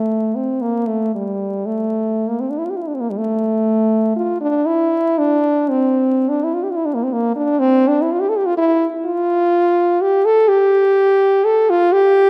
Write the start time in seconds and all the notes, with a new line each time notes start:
Already playing: A3
0.35 C4
0.61 A#3
0.87 A3
1.15 G3
1.66 A3
2.29 A#3
2.40 C4
2.50 D4
2.58 E4
2.65 F4
2.70 G4
2.76 F4
2.82 E4
2.87 D4
2.95 C4
3.00 A#3
3.10 G3
3.17 A3
4.16 F4
4.41 D4
4.66 E4
5.18 D4
5.70 C4
6.29 D4
6.44 E4
6.54 F4
6.63 G4
6.71 F4
6.76 E4
6.86 D4
6.94 A#3
7.03 C4
7.13 A#3
7.36 D4
7.59 C4
7.88 D4
8.02 E4
8.12 F4
8.20 G4
8.29 A4
8.37 G4
8.46 F4
8.57 E4
9.06 F4
10.01 G4
10.25 A4
10.48 G4
11.44 A4
11.70 F4
11.92 G4